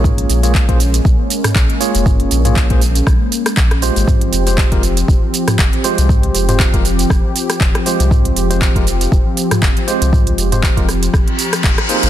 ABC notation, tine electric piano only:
X:1
M:4/4
L:1/16
Q:"Swing 16ths" 1/4=119
K:Fm
V:1 name="Tine electric piano"
[B,FAd]3 [B,FAd]2 [B,FAc] z8 [B,FAd]2- | [B,FAd]3 [B,FAd]2 [B,FAc] z8 [A,FGc]2- | [A,FGc]3 [A,FGc]2 [A,FGB] z8 [A,FGc]2- | [A,FGc]3 [A,FGc]2 [A,FGB] z8 [A,FGc]2- |
[A,FGc]3 [A,FGc]2 [A,FGB] z8 [A,FGc]2- | [A,FGc]3 [A,FGc]2 [A,FGB] z8 [B,EAc]2 |]